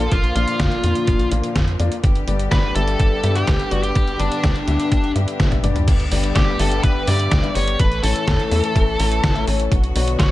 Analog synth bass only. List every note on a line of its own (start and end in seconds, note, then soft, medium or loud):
0.12 0.33 A#1 loud
0.35 0.46 A#1 medium
0.60 0.70 F2 medium
0.84 0.94 F2 medium
1.08 1.29 A#1 medium
1.32 1.42 A#1 medium
1.56 1.77 F2 loud
1.79 1.90 F2 medium
2.04 2.25 G1 loud
2.28 2.49 G1 medium
2.52 2.73 G1 loud
2.75 2.97 G1 loud
3.00 3.10 G1 loud
3.23 3.45 G2 medium
3.48 3.58 D2 medium
3.72 3.93 G1 medium
3.96 4.17 G1 loud
4.19 4.30 G1 medium
4.44 4.54 D2 medium
4.68 4.78 D2 medium
4.92 5.13 G1 loud
5.15 5.26 G2 loud
5.40 5.61 G1 loud
5.63 5.74 G1 medium
5.88 6.09 G1 loud
6.12 6.33 G1 medium
6.36 6.57 G1 loud
6.59 6.81 G1 loud
6.84 6.94 G1 loud
7.07 7.29 G2 medium
7.32 7.42 D2 medium
7.56 7.77 G1 medium
7.79 8.01 A1 loud
8.03 8.14 A1 medium
8.27 8.38 E2 medium
8.51 8.62 E2 loud
8.76 8.97 A1 loud
9.00 9.21 A1 medium
9.24 9.45 A1 loud
9.47 9.69 A1 medium
9.72 9.93 B1 loud
9.95 10.17 B1 medium
10.19 10.31 B1 loud